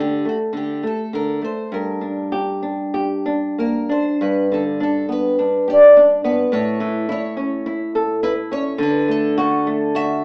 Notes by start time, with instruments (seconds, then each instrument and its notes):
Already playing: nylon-string guitar D3
0.00 twelve-string acoustic guitar G4
0.25 nylon-string guitar A3, twelve-string acoustic guitar F#4
0.53 nylon-string guitar D3
0.57 twelve-string acoustic guitar G4
0.83 nylon-string guitar A3
0.87 twelve-string acoustic guitar A4
1.13 nylon-string guitar D3, twelve-string acoustic guitar A#4
1.42 nylon-string guitar A3, twelve-string acoustic guitar C5
1.72 nylon-string guitar G2, twelve-string acoustic guitar A#4
2.01 nylon-string guitar D4
2.32 nylon-string guitar G4
2.63 nylon-string guitar D4
2.94 nylon-string guitar G4
3.26 nylon-string guitar D4
3.58 nylon-string guitar A#3, twelve-string acoustic guitar A#4
3.89 nylon-string guitar D4, twelve-string acoustic guitar C5
4.21 nylon-string guitar G2, twelve-string acoustic guitar B4
4.52 nylon-string guitar D3, twelve-string acoustic guitar A4
4.80 nylon-string guitar D4, twelve-string acoustic guitar A4
5.09 nylon-string guitar B3, twelve-string acoustic guitar B4
5.39 nylon-string guitar D4
5.68 nylon-string guitar G4, twelve-string acoustic guitar D5
5.97 nylon-string guitar D4
6.24 nylon-string guitar B3, twelve-string acoustic guitar B4
6.52 nylon-string guitar A2, twelve-string acoustic guitar C#5
6.80 nylon-string guitar E3
7.09 nylon-string guitar E4, twelve-string acoustic guitar C#5
7.37 nylon-string guitar C#4
7.66 nylon-string guitar E4
7.95 nylon-string guitar A4
8.23 nylon-string guitar E4, twelve-string acoustic guitar B4
8.51 nylon-string guitar C#4, twelve-string acoustic guitar C#5
8.78 nylon-string guitar D3
8.83 twelve-string acoustic guitar B4
9.08 nylon-string guitar A3, twelve-string acoustic guitar A4
9.38 nylon-string guitar F#4, twelve-string acoustic guitar A4
9.67 nylon-string guitar A3
9.95 nylon-string guitar F#4, twelve-string acoustic guitar E5